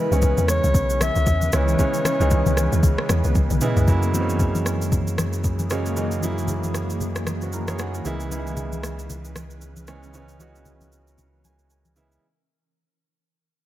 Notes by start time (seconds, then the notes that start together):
Already playing: C#3 E3 G#3 B3 C#4 E4 B4
0.11 C#2 C#3 E3 G#3 B3 C#4, shaker
0.22 kick, low conga, shaker
0.38 E2, high conga, shaker
0.48 C#5, cross-stick, shaker
0.64 C#2, shaker
0.74 B1, kick, low conga, shaker
0.90 shaker
1.01 E5, cross-stick, high conga, shaker
1.16 C#2, shaker
1.26 E2, kick, shaker
1.42 high conga, shaker
1.52 C#2 C#3 E3 G#3 B3 E4 C#5, cross-stick, shaker
1.68 shaker
1.79 C#3 E3 G#3 B3 C#4, kick, low conga, shaker
1.94 shaker
2.05 cross-stick, high conga, shaker
2.20 C#2 C#3 E3 G#3 B3 D#4, shaker
2.31 kick, low conga, shaker
2.46 C#2, high conga, shaker
2.57 cross-stick, shaker
2.72 E2, shaker
2.83 C#2, kick, low conga, shaker
2.98 cross-stick
3.09 E2, cross-stick, high conga, shaker
3.24 C#2, shaker
3.35 C#2, kick, high tom, shaker
3.50 B1, mid tom, high conga, shaker
3.61 C#3 E3 G#3 B3 E4, mid tom, shaker
3.77 C#2, floor tom, shaker
3.88 F#2 C#3 E3 F#3 G#3 A#3 E4 G#4, kick, shaker
4.03 shaker
4.14 C#3 F#3 G#3 A#3 C4, high conga, shaker
4.21 C#4
4.29 shaker
4.39 kick, low conga, shaker
4.55 high conga, shaker
4.66 cross-stick, shaker
4.82 shaker
4.92 kick, low conga, shaker
5.07 shaker
5.18 cross-stick, high conga, shaker
5.33 shaker
5.44 kick, shaker
5.59 high conga, shaker
5.70 C#3 F#3 G#3 A#3 C#4, cross-stick, shaker
5.86 shaker
5.96 C#3 F#3 G#3 A#3 D#4, shaker
6.11 shaker
6.22 C#3 F#3 G#3 A#3 E4, high conga, shaker
6.38 shaker
6.48 low conga, shaker
6.63 high conga, shaker
6.74 cross-stick, shaker
6.90 shaker
7.01 low conga, shaker
7.16 cross-stick, shaker
7.27 cross-stick, high conga, shaker
7.42 C#4 F#4, shaker
7.53 E4 A#4 A#5, shaker
7.68 G#4 C#5, cross-stick, high conga, shaker
7.79 D#4 G#4 F#5, cross-stick, shaker
7.94 E4 A#4, shaker
8.05 C#2 C#3 E3 G#3 B3 C#4 E4 B4, shaker
8.20 shaker
8.31 C#3 E3 G#3 B3 D#4, high conga, shaker
8.39 E4
8.47 shaker
8.57 low conga, shaker
8.73 high conga, shaker
8.83 cross-stick, shaker
8.99 shaker
9.10 low conga, shaker
9.25 shaker
9.36 cross-stick, high conga, shaker
9.50 shaker
9.61 shaker
9.76 high conga, shaker
9.87 C#3 E3 G#3 B3 C#4, cross-stick, shaker
10.03 shaker
10.14 C#3 E3 G#3 B3 C#4 A#4, shaker
10.29 shaker
10.40 C#3 E3 G#3 B3 F#4, high conga, shaker
10.55 shaker
10.65 low conga, shaker
10.81 high conga, shaker
10.92 shaker
11.07 shaker
11.18 low conga, shaker
11.45 G#5, high conga, shaker
11.59 shaker
11.70 G#5, shaker
11.85 high conga, shaker
11.96 C#3 E3 G#3 B3 E4 E5, shaker
12.12 shaker